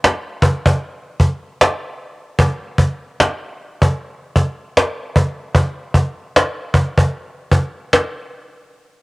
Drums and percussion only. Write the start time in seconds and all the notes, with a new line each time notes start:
0.04 cajon slap
0.42 cajon bass
0.66 cajon bass
1.20 cajon bass
1.61 cajon slap
2.39 cajon bass
2.78 cajon bass
3.20 cajon slap
3.82 cajon bass
4.36 cajon bass
4.77 cajon slap
5.16 cajon bass
5.55 cajon bass
5.94 cajon bass
6.36 cajon slap
6.74 cajon bass
6.98 cajon bass
7.52 cajon bass
7.93 cajon slap